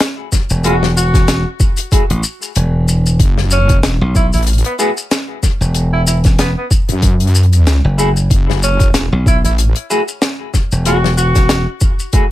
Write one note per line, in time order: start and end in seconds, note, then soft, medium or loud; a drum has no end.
0.00 snare loud
0.00 closed hi-hat loud
0.00 maracas soft
0.32 kick medium
0.32 snare soft
0.32 maracas loud
0.50 1.43 E1 loud
0.50 maracas medium
0.64 0.75 A3 loud
0.64 0.75 E4 medium
0.64 0.75 F#4 medium
0.64 0.90 F#4 medium
0.64 0.75 G#4 loud
0.64 closed hi-hat medium
0.64 maracas soft
0.83 snare medium
0.97 1.47 F#4 loud
0.97 maracas medium
1.14 kick loud
1.14 snare soft
1.14 closed hi-hat medium
1.14 maracas medium
1.28 snare loud
1.28 closed hi-hat loud
1.28 maracas soft
1.60 kick loud
1.60 maracas loud
1.77 closed hi-hat medium
1.77 maracas medium
1.91 2.02 A3 medium
1.91 2.02 E4 medium
1.91 2.02 F#4 medium
1.91 2.02 G#4 loud
1.91 kick loud
1.91 closed hi-hat medium
1.91 maracas soft
2.10 2.22 A1 medium
2.10 closed hi-hat medium
2.23 maracas medium
2.42 maracas medium
2.55 3.18 E1 loud
2.55 closed hi-hat medium
2.55 maracas soft
2.88 maracas loud
3.06 maracas medium
3.19 3.81 F#1 loud
3.19 kick loud
3.19 closed hi-hat medium
3.19 maracas soft
3.38 snare medium
3.51 3.77 C#4 loud
3.51 maracas loud
3.69 kick loud
3.69 closed hi-hat medium
3.69 maracas medium
3.83 3.99 E1 loud
3.83 snare loud
3.83 closed hi-hat medium
3.83 maracas soft
4.01 4.30 B1 loud
4.15 4.27 E4 medium
4.15 kick loud
4.15 maracas medium
4.33 4.63 A1 medium
4.33 4.43 E4 medium
4.33 closed hi-hat soft
4.33 maracas medium
4.37 closed hi-hat soft
4.43 closed hi-hat soft
4.47 closed hi-hat medium
4.47 maracas soft
4.53 closed hi-hat medium
4.58 closed hi-hat medium
4.65 4.74 B3 medium
4.65 closed hi-hat medium
4.79 4.89 A3 medium
4.79 4.91 B3 medium
4.79 4.89 E4 medium
4.79 4.89 F#4 medium
4.79 4.89 G#4 loud
4.79 maracas loud
4.97 maracas medium
5.11 snare loud
5.11 closed hi-hat loud
5.11 maracas soft
5.43 kick medium
5.43 snare soft
5.43 maracas loud
5.61 6.54 E1 medium
5.61 maracas medium
5.75 closed hi-hat medium
5.75 maracas soft
5.93 6.02 E4 loud
6.07 6.19 E4 medium
6.07 maracas loud
6.24 kick loud
6.24 snare soft
6.24 closed hi-hat medium
6.24 maracas medium
6.39 6.51 B3 medium
6.39 snare loud
6.39 closed hi-hat medium
6.39 maracas soft
6.58 6.66 B3 medium
6.71 kick loud
6.71 maracas medium
6.89 7.82 F#2 loud
6.89 closed hi-hat medium
6.89 maracas medium
7.02 kick loud
7.02 closed hi-hat medium
7.02 maracas soft
7.20 closed hi-hat medium
7.27 closed hi-hat soft
7.34 closed hi-hat soft
7.34 maracas loud
7.43 closed hi-hat soft
7.53 closed hi-hat medium
7.53 maracas medium
7.67 snare loud
7.67 closed hi-hat medium
7.67 maracas soft
7.85 8.28 F#1 loud
7.98 8.09 A3 medium
7.98 8.09 E4 medium
7.98 8.09 F#4 medium
7.98 8.09 G#4 loud
7.98 maracas loud
8.17 maracas medium
8.30 8.92 F#1 loud
8.30 kick loud
8.30 closed hi-hat medium
8.30 maracas soft
8.50 snare medium
8.63 8.88 C#4 loud
8.63 maracas loud
8.80 kick loud
8.80 closed hi-hat medium
8.80 maracas medium
8.94 9.09 E1 loud
8.94 snare loud
8.94 closed hi-hat medium
8.94 maracas soft
9.12 9.41 B1 loud
9.26 9.38 E4 medium
9.26 kick loud
9.26 maracas medium
9.44 9.73 A1 loud
9.44 9.53 E4 medium
9.44 closed hi-hat medium
9.44 maracas medium
9.58 closed hi-hat medium
9.58 maracas soft
9.76 closed hi-hat medium
9.90 10.00 A3 medium
9.90 10.00 E4 medium
9.90 10.00 F#4 medium
9.90 10.00 G#4 loud
9.90 maracas medium
10.08 maracas soft
10.22 snare loud
10.22 closed hi-hat medium
10.22 maracas soft
10.54 kick medium
10.54 snare soft
10.54 maracas medium
10.72 11.65 E1 loud
10.72 maracas medium
10.85 10.96 A3 loud
10.85 10.96 E4 medium
10.85 11.11 F#4 loud
10.85 10.96 F#4 medium
10.85 10.96 G#4 loud
10.85 closed hi-hat medium
10.85 maracas soft
11.04 snare medium
11.17 11.67 F#4 loud
11.17 maracas loud
11.35 kick loud
11.35 snare soft
11.35 closed hi-hat medium
11.35 maracas soft
11.49 snare loud
11.49 closed hi-hat medium
11.49 maracas soft
11.81 kick loud
11.81 maracas medium
11.99 maracas soft
12.13 12.24 A3 loud
12.13 12.24 E4 medium
12.13 12.24 F#4 medium
12.13 12.24 G#4 medium
12.13 kick loud
12.13 closed hi-hat medium
12.13 maracas soft